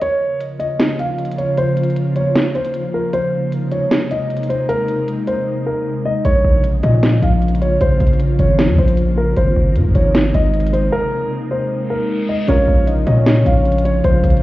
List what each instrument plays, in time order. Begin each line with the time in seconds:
0.02 ambient pad C#3 F3 A#3 F4, grand piano C#5, closed hi-hat
0.41 closed hi-hat
0.59 grand piano D#5, closed hi-hat
0.80 snare, closed hi-hat
0.99 grand piano F5, closed hi-hat
1.18 closed hi-hat
1.25 closed hi-hat
1.32 closed hi-hat
1.38 grand piano C#5, closed hi-hat
1.57 grand piano C5, closed hi-hat
1.77 closed hi-hat
1.83 closed hi-hat
1.90 closed hi-hat
1.96 closed hi-hat
2.16 grand piano C#5, closed hi-hat
2.36 snare, closed hi-hat
2.55 grand piano C5, closed hi-hat
2.65 closed hi-hat
2.74 closed hi-hat
2.94 grand piano A#4
3.13 ambient pad C3 G#3 A#3 D#4, grand piano C5, closed hi-hat
3.52 closed hi-hat
3.72 grand piano C#5, closed hi-hat
3.91 snare, closed hi-hat
4.11 grand piano D#5, closed hi-hat
4.30 closed hi-hat
4.37 closed hi-hat
4.43 closed hi-hat
4.49 grand piano C5, closed hi-hat
4.69 grand piano A#4, closed hi-hat
4.88 closed hi-hat
5.08 closed hi-hat
5.27 grand piano C5, closed hi-hat
5.67 grand piano A#4
6.05 grand piano D#5
6.25 808-style bass A#1, ambient pad C#3 F3 A#3 F4, grand piano C#5, closed hi-hat
6.44 808-style bass A#1
6.64 closed hi-hat
6.83 808-style bass A#2, grand piano D#5, closed hi-hat
7.03 snare, closed hi-hat
7.22 808-style bass A#1, grand piano F5, closed hi-hat
7.42 closed hi-hat
7.48 closed hi-hat
7.55 closed hi-hat
7.61 grand piano C#5, closed hi-hat
7.81 808-style bass A#1, grand piano C5, closed hi-hat
8.00 808-style bass A#1, closed hi-hat
8.07 closed hi-hat
8.13 closed hi-hat
8.20 closed hi-hat
8.39 808-style bass G#1, grand piano C#5, closed hi-hat
8.59 snare, closed hi-hat
8.68 808-style bass F2
8.78 808-style bass A#1, grand piano C5, closed hi-hat
8.88 closed hi-hat
8.97 closed hi-hat
9.18 grand piano A#4
9.37 808-style bass G#1, ambient pad C3 G#3 D#4, grand piano C5, closed hi-hat
9.56 808-style bass G#1
9.76 808-style bass G#2, closed hi-hat
9.85 808-style bass G#1
9.95 808-style bass G#1, grand piano C#5, closed hi-hat
10.15 snare, closed hi-hat
10.34 808-style bass G#1, grand piano D#5, closed hi-hat
10.54 closed hi-hat
10.60 closed hi-hat
10.67 closed hi-hat
10.73 grand piano C5, closed hi-hat
10.92 grand piano A#4
11.51 grand piano C5
11.71 reverse cymbal
11.90 grand piano A#4
12.29 grand piano D#5
12.47 808-style bass A#1, grand piano C#3 A#3 F4 A#4 C#5, ambient pad C#3 F3 A#3 F4, soft synth lead F5, closed hi-hat
12.68 808-style bass A#1
12.87 soft synth lead D#5, closed hi-hat
13.06 808-style bass A#2, soft synth lead C#5, grand piano D#5, closed hi-hat
13.26 snare, closed hi-hat
13.46 808-style bass A#1, grand piano F5, closed hi-hat
13.65 closed hi-hat
13.72 closed hi-hat
13.78 closed hi-hat
13.85 grand piano C#5, closed hi-hat
14.04 808-style bass A#1, grand piano C5, soft synth lead F5, closed hi-hat
14.24 808-style bass A#1, closed hi-hat
14.30 closed hi-hat
14.37 closed hi-hat